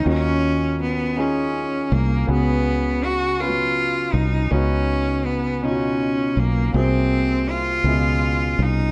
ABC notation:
X:1
M:6/8
L:1/8
Q:3/8=54
K:C#mix
V:1 name="Cello"
C2 B, C2 A, | B,2 F E2 D | C2 B, C2 A, | ^B,2 E3 D |]
V:2 name="Grand piano"
[D,CDEF]3 [CDEG]3 | [C,B,CFG]3 [F,B,CEB]3 | [C,B,CDF]3 [B,,CDEF]3 | [^B,,F,A,^B,G]3 [=B,,=B,C=E^EG]3 |]
V:3 name="Fingered electric bass" clef=bass
D,,4- D,, ^B,,, | C,,4- C,, ^B,,, | C,,4- C,, B,,, | ^B,,,3 C,,2 B,,, |]